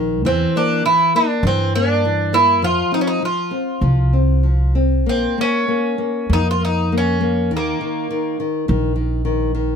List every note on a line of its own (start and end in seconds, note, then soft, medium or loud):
0.00 0.25 A#1 medium
0.00 0.24 D#3 medium
0.25 0.44 E2 medium
0.25 0.85 E3 medium
0.25 0.56 C4 medium
0.56 0.84 A#3 soft
0.56 0.85 D4 medium
0.86 1.14 E3 medium
0.86 1.12 E4 medium
1.15 1.43 A#3 soft
1.15 1.46 D4 medium
1.43 2.62 G2 loud
1.43 1.73 E3 medium
1.43 1.75 C4 medium
1.75 2.03 A#3 soft
1.75 2.35 D4 medium
2.05 2.32 E3 soft
2.33 2.61 A#3 medium
2.33 2.64 E4 medium
2.62 2.81 F2 medium
2.62 3.21 F3 medium
2.62 2.91 F4 medium
2.92 3.21 C4 soft
2.92 2.99 D#4 medium
3.01 3.07 C#4 medium
3.07 3.22 D#4 medium
3.22 3.51 F3 soft
3.22 4.72 F4 medium
3.51 3.81 C4 soft
3.81 5.05 C2 medium
3.81 4.12 F3 soft
4.13 4.43 C4 soft
4.43 4.73 F3 soft
4.75 5.05 C4 soft
5.05 5.26 A#1 medium
5.05 5.37 A#3 soft
5.05 5.39 C4 medium
5.38 5.67 A#3 soft
5.38 6.34 C#4 medium
5.68 5.97 A#3 soft
5.98 6.28 A#3 soft
6.30 7.53 F2 medium
6.30 6.59 A#3 medium
6.30 6.47 D#4 medium
6.51 6.62 F4 medium
6.60 6.90 A#3 soft
6.65 6.94 D#4 medium
6.92 7.19 A#3 soft
6.98 7.51 C#4 medium
7.21 7.50 A#3 soft
7.51 7.72 D#2 medium
7.51 7.80 D#3 medium
7.57 8.37 A#3 medium
7.81 8.09 D#3 soft
8.11 8.38 D#3 soft
8.40 8.67 D#3 soft
8.68 9.76 A#1 medium
8.68 8.95 D#3 medium
8.96 9.24 D#3 soft
9.25 9.54 D#3 soft
9.55 9.76 D#3 soft